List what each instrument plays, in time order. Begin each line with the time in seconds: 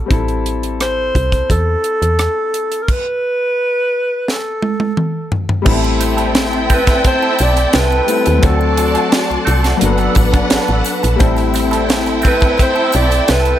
Already playing: grand piano G3 B3 F#4 A4
0.06 grand piano G3 C4
0.11 fm bass A1, grand piano E4 A4, kick, closed hi-hat
0.28 closed hi-hat
0.46 closed hi-hat
0.63 closed hi-hat
0.80 alto saxophone C5, cross-stick, closed hi-hat
1.15 fm bass C2, kick, closed hi-hat
1.32 kick, closed hi-hat
1.50 fm bass E2, alto saxophone A4, kick, closed hi-hat
1.84 closed hi-hat
2.02 fm bass E2, closed hi-hat
2.19 cross-stick, closed hi-hat
2.54 closed hi-hat
2.72 closed hi-hat
2.83 alto saxophone A#4
2.88 alto saxophone B4, kick, crash
4.28 alto saxophone A4, snare
4.62 high tom
4.80 high tom
4.97 mid tom
5.32 floor tom
5.49 floor tom
5.62 grand piano G3 A3 B3, clean electric guitar G3 C4 E4, crash, muted triangle
5.66 fm bass A1, string section C4 E4 G5, grand piano E4 A4, clean electric guitar A4, string machine A4 E5 G5 A5, kick
5.71 grand piano C4
5.83 muted clean electric guitar stroke, muted triangle
6.00 muted clean electric guitar stroke, closed hi-hat, triangle
6.17 clean electric guitar G3 C4 E4 A4, closed hi-hat, muted triangle
6.35 snare, closed hi-hat, muted triangle
6.53 muted clean electric guitar stroke, muted triangle
6.70 clean electric guitar G3 C4 E4 A4, kick, closed hi-hat, triangle
6.74 alto saxophone B4
6.87 clean electric guitar G3 C4 E4 A4, kick, snare, closed hi-hat, muted triangle
7.04 alto saxophone C5, muted clean electric guitar stroke, kick, closed hi-hat, muted triangle
7.22 clean electric guitar G3 C4 E4 A4, muted triangle
7.39 fm bass B1, muted clean electric guitar stroke, closed hi-hat, triangle
7.43 alto saxophone D5
7.57 muted clean electric guitar stroke, closed hi-hat, muted triangle
7.73 fm bass C2, clean electric guitar G3 C4 E4 A4, alto saxophone B4, snare, closed hi-hat, muted triangle
7.92 muted triangle
8.06 grand piano G3 A3 C4 E4 A4, muted clean electric guitar stroke, closed hi-hat, triangle
8.26 fm bass D#2, muted clean electric guitar stroke, closed hi-hat, muted triangle
8.39 grand piano F#3 A3 C4, clean electric guitar A3, closed hi-hat
8.43 fm bass D2, clean electric guitar C4 F#4 A4, grand piano D4 A4, string section F#4 D5 A5, string machine A4 D5 F#5 C6, alto saxophone A4, kick, muted triangle
8.60 muted clean electric guitar stroke, muted triangle
8.77 muted clean electric guitar stroke, closed hi-hat, triangle
8.94 clean electric guitar A3 C4 F#4 A4, closed hi-hat, muted triangle
9.12 snare, closed hi-hat, muted triangle
9.28 fm bass C2, muted clean electric guitar stroke, muted triangle
9.45 fm bass C2, clean electric guitar A3 C4 F#4 A4, closed hi-hat, triangle
9.63 clean electric guitar A3 C4 F#4 A4, snare, closed hi-hat, muted triangle
9.77 grand piano F#3 A#3 D4, string section B4, muted clean electric guitar stroke
9.81 fm bass G1, string section D4 F#5, grand piano F#4 A4, string machine A5 B5, closed hi-hat, muted triangle
9.85 grand piano B3
9.98 clean electric guitar F#3 B3 D4 A4, closed hi-hat, muted triangle
10.15 fm bass A1, muted clean electric guitar stroke, kick, closed hi-hat, triangle
10.33 muted clean electric guitar stroke, kick, closed hi-hat, muted triangle
10.50 fm bass A1, clean electric guitar F#3 B3 D4 A4, snare, closed hi-hat, muted triangle
10.68 fm bass A1, muted triangle
10.85 muted clean electric guitar stroke, closed hi-hat, triangle
11.03 fm bass A#1, muted clean electric guitar stroke, closed hi-hat, muted triangle
11.16 grand piano G3 A3 C4, clean electric guitar G3 C4 E4, string section C4 E4 G5, string machine E5 G5, muted triangle
11.20 fm bass A1, grand piano E4 A4, clean electric guitar A4, kick, closed hi-hat
11.37 muted clean electric guitar stroke, closed hi-hat, muted triangle
11.54 muted clean electric guitar stroke, closed hi-hat, triangle
11.71 clean electric guitar G3 C4 E4 A4, closed hi-hat, muted triangle
11.89 snare, closed hi-hat, muted triangle
12.06 muted clean electric guitar stroke, closed hi-hat, muted triangle
12.22 clean electric guitar G3 C4 E4 A4, kick, closed hi-hat, triangle
12.28 alto saxophone B4
12.41 clean electric guitar G3 C4 E4 A4, kick, closed hi-hat, muted triangle
12.58 muted clean electric guitar stroke, kick, closed hi-hat, muted triangle
12.62 alto saxophone C5
12.75 clean electric guitar G3 C4 E4 A4, muted triangle
12.92 fm bass B1, alto saxophone D5, muted clean electric guitar stroke, closed hi-hat, triangle
13.10 muted clean electric guitar stroke, closed hi-hat, muted triangle
13.28 fm bass C2, clean electric guitar G3 C4 E4 A4, alto saxophone B4, snare, closed hi-hat, muted triangle
13.45 closed hi-hat, muted triangle